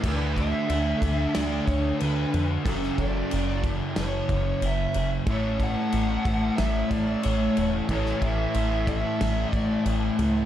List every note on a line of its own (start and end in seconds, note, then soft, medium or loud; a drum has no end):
0.04 0.54 D2 loud
0.04 2.64 D3 medium
0.04 2.67 A3 medium
0.04 2.66 D4 loud
0.04 kick loud
0.04 crash loud
0.04 crash medium
0.08 0.40 B4 loud
0.37 1.33 E5 loud
0.37 kick medium
0.37 crash soft
0.70 0.94 D2 medium
0.70 crash medium
1.02 1.27 D2 medium
1.02 kick medium
1.02 crash medium
1.34 1.60 D2 loud
1.34 1.65 D5 loud
1.34 snare loud
1.34 crash medium
1.66 1.92 D2 medium
1.66 1.99 C#5 medium
1.66 kick medium
1.66 crash medium
1.99 2.26 D2 medium
1.99 2.46 B4 medium
1.99 crash medium
2.34 2.58 F2 medium
2.34 crash medium
2.64 2.91 F#1 loud
2.64 5.25 F#2 loud
2.64 5.26 C#3 loud
2.64 5.27 F#3 medium
2.64 3.00 A4 medium
2.64 kick loud
2.64 crash medium
2.83 snare soft
2.98 3.23 F#1 loud
2.98 3.61 D5 medium
2.98 kick medium
2.98 crash soft
3.31 3.82 F#1 medium
3.31 crash medium
3.64 kick medium
3.64 crash medium
3.96 4.22 F#1 loud
3.96 4.32 C#5 medium
3.96 snare loud
3.96 crash medium
4.29 4.54 F#1 medium
4.29 kick medium
4.29 crash soft
4.34 4.65 C#5 medium
4.62 4.87 F#1 medium
4.62 crash medium
4.66 5.10 E5 medium
4.94 5.20 F#1 medium
4.94 crash medium
5.26 5.76 A1 loud
5.26 7.87 A2 medium
5.26 7.87 E3 medium
5.26 7.91 A3 loud
5.26 kick loud
5.26 crash medium
5.31 5.63 C#5 loud
5.60 6.63 F#5 loud
5.60 kick medium
5.60 crash soft
5.92 6.18 A1 loud
5.92 crash medium
6.25 6.50 A1 medium
6.25 kick loud
6.25 crash medium
6.56 6.83 A1 loud
6.56 6.88 E5 loud
6.56 snare loud
6.56 crash medium
6.91 7.16 A1 medium
6.91 7.23 D5 medium
6.91 kick medium
6.91 crash medium
7.23 7.49 A1 medium
7.23 7.69 C#5 medium
7.23 crash medium
7.57 7.82 E1 medium
7.57 crash medium
7.88 8.14 A1 medium
7.88 10.45 A2 medium
7.88 10.45 E3 loud
7.88 10.45 A3 loud
7.88 8.24 C#5 medium
7.88 kick loud
7.88 crash medium
8.06 snare soft
8.22 8.47 A1 loud
8.22 8.87 E5 loud
8.22 kick medium
8.22 crash soft
8.54 9.04 A1 medium
8.54 crash medium
8.87 9.54 E5 medium
8.87 kick medium
8.87 crash medium
9.21 9.45 A1 loud
9.21 snare loud
9.21 crash medium
9.53 9.77 A1 medium
9.53 9.82 D5 medium
9.53 kick medium
9.53 crash medium
9.86 10.10 A1 medium
9.86 crash medium
10.19 10.43 C#2 medium
10.19 crash medium